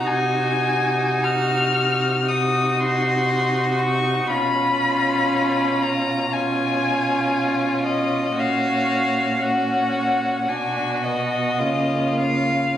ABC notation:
X:1
M:4/4
L:1/8
Q:1/4=58
K:G#dor
V:1 name="Violin"
g2 e'2 d' ^b2 c' | b3 a g3 d | e2 f2 g d2 e |]
V:2 name="Violin"
F4 F4 | E4 E4 | F2 F2 F2 E2 |]
V:3 name="Viola"
D4 D4 | C4 C4 | C2 C2 =D B, A,2 |]
V:4 name="Cello" clef=bass
^B,,8 | B,,8 | A,,4 B,,2 C,2 |]